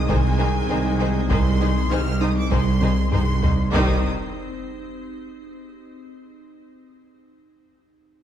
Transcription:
0.00 3.69 C2 medium
0.00 3.43 D#3 medium
0.00 3.43 G#3 loud
0.00 3.39 C4 medium
0.00 3.69 C4 medium
0.00 3.39 D#4 loud
0.00 3.71 D#4 medium
0.00 3.73 G#4 medium
0.00 3.69 C5 medium
0.08 0.62 C2 loud
0.08 0.63 C2 loud
0.08 0.17 D#3 medium
0.08 0.27 G#3 loud
0.08 0.17 D#4 medium
0.08 0.17 G#4 medium
0.08 0.17 C5 medium
0.08 1.30 G#5 loud
0.08 taiko loud
0.38 0.48 D#3 medium
0.38 0.58 C4 medium
0.38 0.48 D#4 medium
0.38 0.46 G#4 medium
0.38 0.46 C5 medium
0.38 taiko rim soft
0.69 1.23 C2 loud
0.69 0.78 D#3 medium
0.69 0.78 D#4 medium
0.69 0.77 G#4 medium
0.69 0.88 G#4 medium
0.69 0.78 C5 medium
0.99 1.08 D#3 medium
0.99 1.07 D#4 medium
0.99 1.08 G#4 medium
0.99 1.08 C5 medium
1.29 1.84 C2 loud
1.29 1.39 D#3 loud
1.29 1.48 G#3 loud
1.29 1.39 D#4 loud
1.29 1.38 G#4 medium
1.29 1.38 C5 medium
1.29 1.89 C6 loud
1.29 taiko loud
1.61 1.69 D#3 medium
1.61 1.69 D#4 medium
1.61 1.79 G#4 medium
1.61 1.69 G#4 medium
1.61 1.69 C5 medium
1.90 2.44 C2 loud
1.90 1.99 D#3 medium
1.90 2.09 D#4 medium
1.90 1.99 D#4 medium
1.90 1.99 G#4 medium
1.90 1.99 C5 medium
1.90 2.21 F6 loud
2.20 2.29 D#3 medium
2.20 2.39 D#4 medium
2.20 2.29 D#4 medium
2.20 2.29 G#4 medium
2.20 2.29 C5 medium
2.20 2.36 D#6 loud
2.37 2.52 D6 loud
2.50 3.05 C2 loud
2.50 2.60 D#3 medium
2.50 2.69 G#3 loud
2.50 2.60 D#4 medium
2.50 2.59 G#4 medium
2.50 2.59 C5 medium
2.50 3.11 C6 loud
2.50 taiko loud
2.81 2.90 D#3 medium
2.81 3.00 C4 medium
2.81 2.90 D#4 medium
2.81 2.90 G#4 medium
2.81 2.90 C5 medium
2.81 taiko mid medium
3.12 3.66 C2 medium
3.12 3.66 C2 loud
3.12 3.21 D#3 medium
3.12 3.21 D#4 medium
3.12 3.30 G#4 medium
3.12 3.20 G#4 medium
3.12 3.20 C5 medium
3.12 3.72 C6 loud
3.12 taiko low-mid loud
3.43 3.51 D#3 medium
3.43 3.51 D#4 medium
3.43 3.51 G#4 medium
3.43 3.51 C5 medium
3.43 taiko low loud
3.73 4.07 C2 loud
3.73 4.07 D#3 loud
3.73 3.99 D#3 medium
3.73 3.99 G3 loud
3.73 3.99 C4 medium
3.73 4.07 D#4 medium
3.73 3.99 D#4 medium
3.73 4.07 G4 medium
3.73 4.07 C5 medium
3.73 4.07 D#6 loud
3.73 impact medium

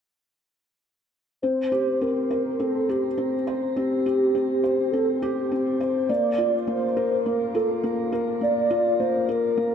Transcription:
1.42 1.71 C4 medium
1.42 2.04 C5 loud
1.72 2.00 G4 medium
2.01 2.29 C4 medium
2.01 2.62 A#4 medium
2.31 2.58 C5 medium
2.60 2.87 C4 medium
2.60 2.91 A4 medium
2.89 3.47 G4 medium
2.89 3.06 G4 medium
3.18 3.34 C4 medium
3.47 3.75 C5 medium
3.76 4.04 C4 medium
3.76 4.93 G4 loud
4.06 4.33 G4 medium
4.35 4.62 C4 medium
4.64 4.91 C5 medium
4.91 5.21 C4 medium
4.91 5.14 A4 loud
5.14 5.22 A4 medium
5.21 5.80 G4 medium
5.21 5.50 G4 medium
5.52 5.79 C4 medium
5.81 6.08 C5 medium
6.09 6.37 A#3 medium
6.09 6.69 D5 loud
6.38 6.55 F4 medium
6.67 6.84 A#3 medium
6.67 7.27 C5 medium
6.97 7.24 A#4 medium
7.26 7.53 A#3 medium
7.26 7.55 A#4 medium
7.55 7.82 F4 medium
7.55 8.09 A4 medium
7.83 8.11 A#3 medium
8.12 8.40 A#4 medium
8.41 8.69 A#3 medium
8.41 9.01 D5 loud
8.71 8.99 F4 medium
9.00 9.28 A#3 medium
9.00 9.30 C5 loud
9.29 9.57 A#4 medium
9.29 9.75 A#4 medium
9.57 9.75 A#3 medium

